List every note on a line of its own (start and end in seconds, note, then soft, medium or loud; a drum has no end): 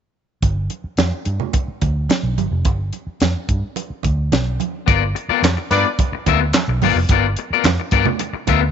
0.42 0.67 G1 medium
0.42 kick medium
0.42 closed hi-hat medium
0.42 muted conga soft
0.70 closed hi-hat medium
0.70 muted conga soft
0.84 muted fingered electric bass stroke soft
0.97 1.10 F2 medium
0.97 snare medium
0.97 closed hi-hat medium
0.97 high conga medium
1.25 1.39 G2 loud
1.25 closed hi-hat medium
1.40 low conga medium
1.53 kick loud
1.53 closed hi-hat loud
1.53 muted conga medium
1.68 muted fingered electric bass stroke soft
1.81 2.07 D2 medium
1.81 kick medium
1.81 closed hi-hat medium
1.81 muted conga soft
2.09 snare loud
2.09 closed hi-hat medium
2.09 high conga medium
2.23 2.36 B1 medium
2.38 2.50 G1 medium
2.38 closed hi-hat medium
2.38 high conga medium
2.51 2.65 F1 medium
2.65 2.90 G1 loud
2.65 kick loud
2.65 closed hi-hat medium
2.65 muted conga medium
2.93 closed hi-hat medium
2.93 muted conga soft
3.07 muted fingered electric bass stroke soft
3.20 3.34 F2 medium
3.20 snare medium
3.20 closed hi-hat medium
3.20 high conga medium
3.49 3.61 G2 loud
3.49 kick medium
3.49 closed hi-hat medium
3.76 closed hi-hat medium
3.76 muted conga soft
3.90 muted fingered electric bass stroke soft
4.03 4.29 D2 medium
4.03 kick medium
4.03 closed hi-hat medium
4.03 muted conga soft
4.32 4.57 B1 medium
4.32 snare loud
4.32 closed hi-hat medium
4.32 high conga medium
4.60 closed hi-hat medium
4.60 high conga medium
4.86 5.13 G1 medium
4.86 5.02 B3 medium
4.86 5.03 F4 medium
4.86 5.03 A#4 medium
4.86 5.03 D5 medium
4.86 kick loud
4.86 closed hi-hat medium
4.86 muted conga soft
5.15 muted clean electric guitar stroke soft
5.15 closed hi-hat medium
5.29 5.42 B3 medium
5.29 5.42 F4 medium
5.29 5.41 A#4 medium
5.29 5.41 D5 medium
5.29 muted fingered electric bass stroke soft
5.42 5.55 F2 medium
5.42 muted clean electric guitar stroke soft
5.42 snare loud
5.42 clap medium
5.42 closed hi-hat medium
5.42 high conga medium
5.57 muted clean electric guitar stroke soft
5.70 5.83 G2 loud
5.70 5.86 B3 medium
5.70 5.89 D4 medium
5.70 5.86 F4 medium
5.70 5.85 A#4 medium
5.70 5.88 B4 loud
5.70 5.89 D5 loud
5.70 5.84 D5 medium
5.70 closed hi-hat medium
5.86 muted clean electric guitar stroke soft
5.99 kick loud
5.99 closed hi-hat medium
5.99 muted conga medium
6.12 muted fingered electric bass stroke soft
6.12 muted clean electric guitar stroke soft
6.26 6.51 D2 medium
6.26 6.42 B3 medium
6.26 6.41 F4 medium
6.26 6.41 A#4 medium
6.26 6.41 E5 loud
6.26 kick medium
6.26 closed hi-hat medium
6.26 muted conga medium
6.41 muted clean electric guitar stroke soft
6.53 muted clean electric guitar stroke soft
6.53 snare loud
6.53 clap loud
6.53 closed hi-hat medium
6.53 high conga medium
6.68 6.80 B1 medium
6.68 muted clean electric guitar stroke soft
6.81 6.94 G1 medium
6.81 6.97 B3 medium
6.81 6.97 F4 medium
6.81 6.97 A#4 medium
6.81 6.96 D5 medium
6.81 open hi-hat medium
6.81 high conga medium
6.95 7.08 F1 medium
6.95 muted clean electric guitar stroke soft
7.09 7.34 G1 loud
7.09 7.25 B3 medium
7.09 7.26 F4 medium
7.09 7.25 A#4 medium
7.09 kick loud
7.09 closed hi-hat medium
7.09 muted conga soft
7.13 7.26 D5 medium
7.36 muted clean electric guitar stroke soft
7.36 closed hi-hat medium
7.50 7.64 B3 soft
7.50 7.64 F4 soft
7.50 7.64 A#4 medium
7.50 7.63 D5 medium
7.50 muted fingered electric bass stroke soft
7.64 7.77 F2 medium
7.64 muted clean electric guitar stroke medium
7.64 snare loud
7.64 clap medium
7.64 closed hi-hat medium
7.64 high conga medium
7.80 muted clean electric guitar stroke soft
7.91 8.04 G2 loud
7.91 8.07 B3 medium
7.91 8.07 F4 medium
7.91 8.06 A#4 medium
7.91 8.05 D5 medium
7.91 kick loud
7.91 closed hi-hat medium
8.05 muted clean electric guitar stroke soft
8.05 low conga medium
8.19 muted clean electric guitar stroke soft
8.19 closed hi-hat loud
8.19 muted conga soft
8.33 muted fingered electric bass stroke soft
8.33 muted clean electric guitar stroke soft
8.47 8.71 D2 medium
8.47 8.63 B3 medium
8.47 8.62 F4 medium
8.47 8.61 A#4 medium
8.47 8.61 E5 medium
8.47 kick medium
8.47 closed hi-hat medium
8.47 muted conga medium
8.62 muted clean electric guitar stroke soft